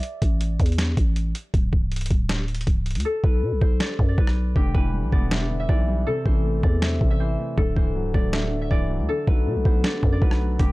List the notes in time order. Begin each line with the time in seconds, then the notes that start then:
Already playing: G4 B4 D5 E5
0.03 closed hi-hat
0.22 A1, kick, closed hi-hat
0.41 closed hi-hat
0.60 E2, kick, closed hi-hat
0.66 closed hi-hat
0.72 closed hi-hat
0.78 finger snap, snare, closed hi-hat
0.97 A1, kick, closed hi-hat
1.16 closed hi-hat
1.35 closed hi-hat
1.54 D1, kick, closed hi-hat
1.73 C1, kick
1.92 closed hi-hat
1.96 closed hi-hat
2.01 closed hi-hat
2.06 closed hi-hat
2.11 D1, kick, closed hi-hat
2.29 finger snap, snare, closed hi-hat
2.48 closed hi-hat
2.55 closed hi-hat
2.61 closed hi-hat
2.67 C1, kick, closed hi-hat
2.86 closed hi-hat
2.91 closed hi-hat
2.95 D2, closed hi-hat
3.00 closed hi-hat
3.05 A4
3.24 B1 B4, kick
3.43 B2
3.52 B1
3.61 B1 C5, kick
3.80 D5, finger snap, snare
3.99 F#2, kick
4.09 D5
4.18 B1 B4, kick
4.27 cross-stick
4.56 E1 D3 G4, kick
4.74 E1 E3 B4, kick
4.94 G3
5.03 B1
5.12 E1 B3 D5, kick
5.31 D4 E5, finger snap, snare
5.50 D3
5.60 E5
5.69 B1 E3 D5, kick
5.88 G3
6.07 C3 A4
6.25 A1 E3 C5, kick
6.44 A3
6.63 E2 D5, kick
6.82 C4 E5, finger snap, snare
7.01 A1 C3, kick
7.10 E5
7.20 E3 C5
7.39 A3
7.57 D1 D3 A4, kick
7.76 C1 E3 C5, kick
7.95 F#3
8.14 D1 A3 D5, kick
8.33 D4 E5, finger snap, snare
8.52 D3
8.62 E5
8.71 C1 E3 D5, kick
8.90 F#3
8.99 D2
9.09 D3 A4
9.27 B1 F#3 B4, kick
9.46 B2 A3
9.56 B1
9.65 B1 B3 C5, kick
9.84 D4 D5, finger snap, snare
10.03 F#2 D3, kick
10.12 D5
10.22 B1 F#3 B4, kick
10.31 cross-stick
10.41 A3
10.59 E1 D3 G4, kick, closed hi-hat